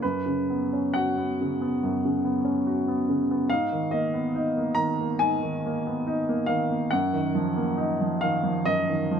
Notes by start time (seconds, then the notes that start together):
0.02 F#2 B4
0.26 C#3
0.50 B3
0.73 C#4
0.94 F#4 F#5
1.18 B3
1.41 C#3
1.61 B3
1.83 F#2
2.05 C#3
2.25 B3
2.45 C#4
2.67 F#4
2.88 B3
3.09 C#3
3.31 B3
3.50 G#2 F5
3.72 D#3
3.91 A#3 D#5
4.14 B3
4.35 D#4
4.57 A#3
4.75 D#3 A#5
5.00 A#3
5.19 G#2 G#5
5.42 D#3
5.66 A#3
5.87 B3
6.07 D#4
6.29 A#3
6.46 D#3 F5
6.71 A#3
6.91 F#2 F#5
7.13 D#3
7.35 F3
7.57 A#3
7.77 D#4
8.01 F3
8.21 D#3 F5
8.44 F3
8.65 F#2 D#5
8.89 D#3
9.11 F3